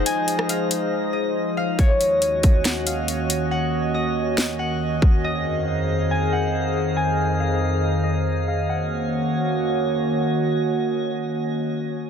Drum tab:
HH |x-x-x-x---------|x-x-x-x-x-x-x-x-|----------------|----------------|
SD |---r------------|--------o-------|--------o-------|----------------|
BD |----------------|o-----o---------|--------------o-|----------------|

HH |----------------|----------------|----------------|
SD |----------------|----------------|----------------|
BD |----------------|----------------|----------------|